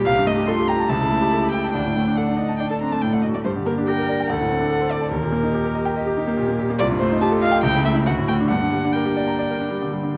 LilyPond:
<<
  \new Staff \with { instrumentName = "Violin" } { \time 4/4 \key g \minor \tempo 4 = 142 f''8 ees''8 c'''8 bes''8 a''4. g''8 | g''4 fis''4 g''16 a''16 bes''16 a''16 g''16 fis''16 ees''16 d''16 | c''8 bes'8 g''4 fis''4. d''8 | bes'2.~ bes'8 r8 |
d''8 c''8 a''8 f''8 g''8 e''8 fis''8 g''8 | fis''4 g''2~ g''8 r8 | }
  \new Staff \with { instrumentName = "Cello" } { \time 4/4 \key g \minor g'4 f'4 e'2 | d'4 d'8 ees'8 d'8 c'8 d'8 fis'8 | g'4 bes'4 a'2 | g'2 g'2 |
f'2 e'4 fis'4 | bes2.~ bes8 r8 | }
  \new Staff \with { instrumentName = "Grand piano" } { \time 4/4 \key g \minor c,16 g,16 a16 g'16 a'16 g'16 g''16 a''16 cis,16 cis16 a16 g'16 a'16 g'16 g''16 a''16 | d,16 a,16 a16 d'16 a'16 d'16 d''16 a''16 d''16 a'16 d'16 a16 a,16 a16 a,16 a16 | g,16 d16 bes16 d'16 g'16 bes'16 d''16 g''16 d,16 a,16 c'16 d'16 a'16 c''16 d''16 a''16 | ees,16 bes,16 bes16 ees'16 g'16 bes'16 ees''16 g''16 ees''16 g'16 ees'16 bes16 bes,16 bes16 bes,16 bes16 |
c,16 g,16 a16 ees'16 g'16 a'16 ees''16 g''16 cis,16 cis16 a16 e'16 d,16 a,16 a16 d'16 | g,16 d16 g16 d'16 bes'16 g'16 d''16 bes''16 d''16 bes'16 d'16 g16 d16 g16 d16 g16 | }
>>